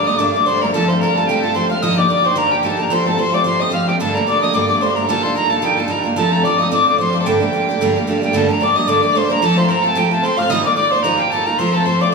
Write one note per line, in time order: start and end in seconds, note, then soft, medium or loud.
0.00 3.98 G2 medium
0.00 3.98 D3 medium
0.06 0.18 G3 soft
0.06 0.19 A3 soft
0.06 0.19 A#3 soft
0.06 0.19 D4 soft
0.06 0.20 D#5 medium
0.06 0.19 D#6 medium
0.18 0.34 G2 medium
0.18 0.34 D3 medium
0.18 0.34 G3 medium
0.18 0.33 A3 medium
0.18 0.35 A#3 medium
0.18 0.32 D4 medium
0.18 0.32 D5 medium
0.18 0.33 D6 medium
0.32 0.45 G3 soft
0.32 0.47 A3 soft
0.32 0.46 A#3 soft
0.32 0.46 D4 soft
0.32 0.47 D5 medium
0.32 0.48 D6 medium
0.45 0.61 G3 medium
0.45 0.61 A3 medium
0.45 0.62 A#3 medium
0.45 0.60 D4 medium
0.45 0.63 C5 medium
0.45 0.63 C6 loud
0.61 0.74 G3 soft
0.61 0.74 A3 soft
0.61 0.74 A#3 soft
0.61 0.74 D4 soft
0.61 0.75 A#4 medium
0.61 0.72 A#5 medium
0.72 0.89 F3 medium
0.72 0.89 A3 medium
0.72 0.89 C4 medium
0.72 0.88 F4 medium
0.72 0.89 A4 medium
0.72 0.90 A5 medium
0.88 1.02 A3 soft
0.88 1.01 F4 soft
0.88 1.00 C5 medium
0.88 1.01 C6 medium
0.92 1.02 C4 soft
1.00 1.16 F3 medium
1.00 1.17 A3 medium
1.00 1.17 C4 medium
1.00 1.17 A#4 medium
1.00 1.17 A#5 loud
1.04 1.16 F4 medium
1.15 1.29 A3 soft
1.15 1.29 F4 medium
1.15 1.26 A4 medium
1.15 1.28 A5 medium
1.20 1.29 C4 soft
1.27 1.43 F3 medium
1.27 1.44 A3 medium
1.27 1.44 C4 medium
1.27 1.44 G4 medium
1.27 1.42 G5 medium
1.31 1.42 F4 medium
1.42 1.55 A3 soft
1.42 1.56 F4 soft
1.42 1.57 A4 medium
1.42 1.57 A5 medium
1.47 1.55 C4 soft
1.55 1.70 F3 medium
1.55 1.70 A3 medium
1.55 1.70 C4 medium
1.55 1.68 F4 medium
1.55 1.71 C5 medium
1.55 1.69 C6 loud
1.69 1.83 A3 medium
1.69 1.83 C4 soft
1.69 1.82 F4 medium
1.69 1.81 F5 medium
1.69 1.84 F6 loud
1.82 1.97 D#3 medium
1.82 1.98 F3 medium
1.82 1.98 A#3 medium
1.82 1.97 D#4 medium
1.82 1.95 G4 medium
1.82 1.99 D#5 medium
1.82 1.97 D#6 loud
1.96 2.09 A#3 soft
1.96 2.10 D#4 medium
1.96 2.09 G4 medium
1.96 2.09 D5 medium
1.96 2.09 D6 medium
2.09 2.24 F3 medium
2.09 2.25 A#3 medium
2.09 2.23 D#4 medium
2.09 2.22 G4 medium
2.09 2.27 D5 medium
2.09 2.27 D6 medium
2.23 2.35 A#3 soft
2.23 2.36 D#4 soft
2.23 2.36 G4 soft
2.23 2.39 C5 medium
2.23 2.39 C6 medium
2.35 2.51 D#3 medium
2.35 2.51 F3 medium
2.35 2.51 A#3 medium
2.35 2.52 D#4 medium
2.35 2.50 G4 medium
2.35 2.53 A#4 medium
2.35 2.53 A#5 loud
2.51 2.63 A#3 soft
2.51 2.64 D#4 soft
2.51 2.64 G4 soft
2.51 2.66 G4 medium
2.51 2.67 G5 medium
2.63 2.78 F3 medium
2.63 2.78 A#3 medium
2.63 2.77 D#4 medium
2.63 2.76 G4 medium
2.63 2.81 A4 medium
2.63 2.83 A5 medium
2.77 2.91 A#3 soft
2.77 2.91 D#4 soft
2.77 2.90 G4 medium
2.77 2.93 A#4 medium
2.81 2.95 A#5 medium
2.90 3.06 F3 medium
2.90 3.06 A3 medium
2.90 3.06 C4 medium
2.90 3.04 F4 medium
2.90 3.08 C5 medium
2.90 3.07 C6 medium
3.05 3.18 A3 soft
3.05 3.17 C4 soft
3.05 3.18 F4 soft
3.05 3.21 A4 medium
3.05 3.20 A5 medium
3.18 3.33 F3 soft
3.18 3.33 A3 soft
3.18 3.34 C4 medium
3.18 3.31 F4 medium
3.18 3.36 C5 medium
3.18 3.35 C6 medium
3.32 3.45 A3 soft
3.32 3.44 C4 soft
3.32 3.45 F4 soft
3.32 3.45 D5 medium
3.32 3.45 D6 medium
3.44 3.60 F3 medium
3.44 3.60 A3 medium
3.44 3.60 C4 medium
3.44 3.58 F4 medium
3.44 3.61 C5 medium
3.44 3.63 C6 loud
3.59 3.71 A3 soft
3.59 3.70 C4 soft
3.59 3.72 F4 soft
3.59 3.75 D#5 medium
3.59 3.72 D#6 medium
3.70 3.87 F3 medium
3.70 3.87 A3 medium
3.70 3.87 C4 medium
3.70 3.85 F4 medium
3.70 3.88 F5 medium
3.70 3.89 F6 medium
3.86 4.00 A3 soft
3.86 4.00 C4 soft
3.86 3.99 F4 medium
3.86 3.94 G4 medium
3.86 3.99 G5 medium
4.00 4.15 G2 medium
4.00 8.37 G2 medium
4.00 8.37 D3 medium
4.00 4.15 D3 medium
4.00 4.15 G3 medium
4.00 4.14 A3 medium
4.00 4.15 A#3 medium
4.00 4.14 D4 medium
4.00 4.16 A4 medium
4.00 4.16 A5 medium
4.14 4.26 G3 soft
4.14 4.28 A3 soft
4.14 4.27 A#3 soft
4.14 4.27 D4 soft
4.14 4.27 A#4 medium
4.14 4.26 A#5 medium
4.27 4.42 G3 medium
4.27 4.42 A3 medium
4.27 4.43 A#3 medium
4.27 4.41 D4 medium
4.27 4.44 D5 medium
4.27 4.41 D6 medium
4.41 4.53 G3 soft
4.41 4.54 A3 soft
4.41 4.54 A#3 soft
4.41 4.54 D4 soft
4.41 4.56 D#5 medium
4.41 4.56 D#6 medium
4.53 4.69 G2 medium
4.53 4.69 D3 medium
4.53 4.69 G3 medium
4.53 4.68 A3 medium
4.53 4.69 A#3 medium
4.53 4.67 D4 medium
4.53 4.83 D5 medium
4.53 4.68 D6 medium
4.68 4.80 G3 soft
4.68 4.82 A3 soft
4.68 4.81 A#3 soft
4.68 4.81 D4 soft
4.68 4.83 D6 medium
4.81 4.96 G3 medium
4.81 4.96 A3 medium
4.81 4.97 A#3 medium
4.81 4.95 D4 medium
4.81 4.96 C5 medium
4.81 4.97 C6 medium
4.95 5.08 G3 soft
4.95 5.09 A3 soft
4.95 5.09 A#3 soft
4.95 5.09 D4 medium
4.95 5.09 A#4 medium
4.95 5.07 A#5 medium
5.07 5.24 D#3 medium
5.07 5.24 G3 medium
5.07 5.24 A#3 medium
5.07 5.23 D#4 medium
5.07 5.22 F4 medium
5.07 5.37 A4 medium
5.07 5.24 A5 medium
5.23 5.35 A#3 soft
5.23 5.36 D#4 soft
5.23 5.36 F4 medium
5.23 5.35 C6 medium
5.35 5.51 G3 soft
5.35 5.51 A#3 soft
5.35 5.50 D#4 medium
5.35 5.49 F4 medium
5.35 5.52 A#4 medium
5.35 5.51 A#5 medium
5.49 5.62 A#3 soft
5.49 5.62 D#4 soft
5.49 5.63 F4 soft
5.49 5.64 A4 medium
5.49 5.62 A5 medium
5.62 5.78 D#3 medium
5.62 5.78 G3 medium
5.62 5.78 A#3 medium
5.62 5.77 D#4 medium
5.62 5.75 F4 medium
5.62 5.79 G4 medium
5.62 5.80 G5 medium
5.77 5.88 A#3 soft
5.77 5.88 D#4 soft
5.77 5.90 F4 soft
5.77 5.92 A4 medium
5.77 5.92 A5 medium
5.88 6.04 G3 medium
5.88 6.05 A#3 soft
5.88 6.04 D#4 medium
5.88 6.02 F4 medium
5.88 6.06 A#4 medium
5.88 6.05 A#5 medium
6.03 6.17 A#3 soft
6.03 6.17 D#4 soft
6.03 6.17 F4 medium
6.16 6.32 F3 medium
6.16 6.32 A3 medium
6.16 6.32 C4 medium
6.16 6.30 F4 medium
6.16 6.45 A4 medium
6.16 6.33 A5 medium
6.32 6.45 A3 soft
6.32 6.44 C4 soft
6.32 6.44 F4 soft
6.32 6.46 A#5 medium
6.43 6.60 F3 medium
6.43 6.60 A3 medium
6.43 6.60 C4 medium
6.43 6.59 D5 medium
6.43 6.62 D6 medium
6.47 6.58 F4 medium
6.58 6.71 A3 soft
6.58 6.72 F4 soft
6.58 6.73 D#5 medium
6.58 6.71 D#6 medium
6.62 6.70 C4 soft
6.71 6.86 F3 medium
6.71 6.87 A3 medium
6.71 6.87 C4 medium
6.71 6.85 F4 medium
6.71 6.86 D5 medium
6.71 6.86 D6 medium
6.86 7.00 A3 soft
6.86 6.98 C4 soft
6.86 6.99 F4 soft
6.86 7.00 D5 medium
6.86 6.99 D6 medium
6.98 7.14 F3 medium
6.98 7.13 A3 medium
6.98 7.14 C4 soft
6.98 7.12 F4 medium
6.98 7.22 C5 medium
6.98 7.19 C6 medium
7.13 7.26 A3 soft
7.13 7.26 C4 soft
7.13 7.26 F4 medium
7.21 8.22 G4 medium
7.21 7.26 A4 medium
7.21 7.28 A5 medium
7.26 7.41 G2 medium
7.26 7.41 D3 medium
7.26 7.41 G3 medium
7.26 7.40 A3 medium
7.26 7.41 A#3 medium
7.26 7.39 D4 medium
7.26 7.98 G5 medium
7.40 7.52 G3 soft
7.40 7.53 A3 soft
7.40 7.53 A#3 soft
7.40 7.53 D4 medium
7.53 7.68 G3 soft
7.53 7.68 A3 medium
7.53 7.69 A#3 soft
7.53 7.68 D4 soft
7.69 7.80 G3 soft
7.69 7.81 A3 soft
7.69 7.81 A#3 soft
7.69 7.81 D4 medium
7.81 7.95 G2 medium
7.81 7.96 D3 medium
7.81 7.96 G3 medium
7.81 7.96 A3 medium
7.81 7.96 A#3 medium
7.81 7.95 D4 medium
7.96 8.06 G3 soft
7.96 8.08 A3 soft
7.96 8.07 A#3 soft
7.96 8.08 D4 soft
8.07 8.22 G3 medium
8.07 8.22 A3 medium
8.07 8.23 A#3 medium
8.07 8.21 D4 medium
8.22 8.33 G3 soft
8.22 8.34 A3 medium
8.22 8.33 A#3 medium
8.22 8.34 D4 medium
8.22 8.36 G4 medium
8.22 8.38 G5 medium
8.33 8.49 G2 medium
8.33 8.49 D3 medium
8.33 8.49 G3 medium
8.33 8.49 A3 medium
8.33 8.49 A#3 medium
8.33 8.47 D4 medium
8.33 8.49 A4 medium
8.33 8.53 A5 medium
8.49 8.59 G3 soft
8.49 8.61 A3 soft
8.49 8.60 A#3 soft
8.49 8.61 D4 medium
8.49 8.63 A#4 medium
8.49 8.64 A#5 medium
8.61 8.76 G3 medium
8.61 8.76 A3 soft
8.61 8.76 A#3 soft
8.61 8.75 D4 medium
8.61 8.77 D5 medium
8.61 8.78 D6 loud
8.76 8.87 G3 soft
8.76 8.88 A3 soft
8.76 8.88 A#3 soft
8.76 8.88 D4 medium
8.76 8.90 D#5 medium
8.76 8.89 D#6 medium
8.87 9.03 G2 medium
8.87 9.03 D3 medium
8.87 9.03 G3 medium
8.87 9.02 A3 medium
8.87 9.03 A#3 medium
8.87 9.01 D4 medium
8.87 9.18 D5 medium
8.87 9.03 D6 loud
9.03 9.13 G3 soft
9.03 9.16 A3 soft
9.03 9.14 A#3 soft
9.03 9.15 D4 medium
9.03 9.19 D6 medium
9.15 9.30 G3 medium
9.15 9.29 A3 medium
9.15 9.30 A#3 medium
9.15 9.28 D4 medium
9.15 9.33 C5 medium
9.15 9.31 C6 loud
9.30 9.42 G3 soft
9.30 9.42 A3 soft
9.30 9.42 A#3 soft
9.30 9.42 D4 medium
9.30 9.43 A#4 medium
9.30 9.46 A#5 medium
9.42 9.57 F3 medium
9.42 9.57 A3 medium
9.42 9.58 C4 medium
9.42 9.55 F4 medium
9.42 9.58 A4 medium
9.42 9.60 A5 loud
9.57 9.69 A3 soft
9.57 9.68 C4 soft
9.57 9.69 F4 soft
9.57 9.70 C5 medium
9.57 9.72 C6 medium
9.69 9.84 F3 medium
9.69 9.84 A3 medium
9.69 9.85 C4 medium
9.69 9.82 F4 medium
9.69 9.84 A#4 medium
9.69 9.85 A#5 medium
9.82 9.96 A3 soft
9.82 9.96 F4 soft
9.82 9.96 A4 medium
9.82 9.99 A5 medium
9.86 9.95 C4 soft
9.95 10.11 F3 medium
9.95 10.12 A3 medium
9.95 10.11 C4 medium
9.95 10.10 F4 medium
9.95 10.10 G4 medium
9.95 10.14 G5 medium
10.10 10.24 A3 soft
10.10 10.23 C4 soft
10.10 10.24 F4 soft
10.10 10.24 A4 medium
10.10 10.26 A5 medium
10.22 10.39 F3 medium
10.22 10.38 A3 medium
10.22 10.39 C4 medium
10.22 10.36 F4 medium
10.22 10.38 C5 medium
10.22 10.40 C6 loud
10.37 10.51 A3 medium
10.37 10.50 C4 soft
10.37 10.50 F4 medium
10.37 10.51 F5 medium
10.37 10.52 F6 loud
10.50 10.65 D#3 medium
10.50 10.66 G3 medium
10.50 10.66 A#3 medium
10.50 10.65 D#4 medium
10.50 10.63 F4 medium
10.50 10.67 D#5 medium
10.50 10.64 D#6 loud
10.64 10.76 A#3 soft
10.64 10.77 D#4 soft
10.64 10.77 F4 medium
10.64 10.76 D5 medium
10.64 10.74 D6 medium
10.75 10.92 G3 medium
10.75 10.92 A#3 medium
10.75 10.92 D#4 medium
10.75 10.90 F4 medium
10.75 10.93 D5 medium
10.75 10.90 D6 medium
10.91 11.04 A#3 soft
10.91 11.04 D#4 soft
10.91 11.04 F4 soft
10.91 11.04 C5 medium
10.91 11.04 C6 medium
11.02 11.19 D#3 medium
11.02 11.20 G3 medium
11.02 11.19 A#3 medium
11.02 11.18 D#4 medium
11.02 11.16 F4 medium
11.02 11.20 A#4 medium
11.02 11.21 A#5 medium
11.18 11.31 A#3 soft
11.18 11.32 D#4 soft
11.18 11.31 F4 medium
11.18 11.33 G4 medium
11.18 11.32 G5 medium
11.30 11.47 G3 medium
11.30 11.47 A#3 medium
11.30 11.46 D#4 medium
11.30 11.45 F4 medium
11.30 11.48 A4 medium
11.30 11.47 A5 medium
11.46 11.59 A#3 soft
11.46 11.60 D#4 soft
11.46 11.59 F4 soft
11.46 11.59 A#4 medium
11.46 11.60 A#5 medium
11.58 11.74 F3 medium
11.58 11.74 A3 medium
11.58 11.74 C4 medium
11.58 11.73 F4 medium
11.58 11.75 C5 medium
11.58 11.76 C6 medium
11.73 11.87 A3 soft
11.73 11.85 C4 soft
11.73 11.86 F4 soft
11.73 11.87 A4 medium
11.73 11.87 A5 medium
11.85 12.01 F3 soft
11.85 12.01 A3 medium
11.85 12.01 C4 medium
11.85 12.00 F4 medium
11.85 12.02 C5 medium
11.85 12.02 C6 medium
12.01 12.13 A3 soft
12.01 12.12 C4 soft
12.01 12.13 F4 medium
12.01 12.15 D5 medium
12.01 12.12 D6 loud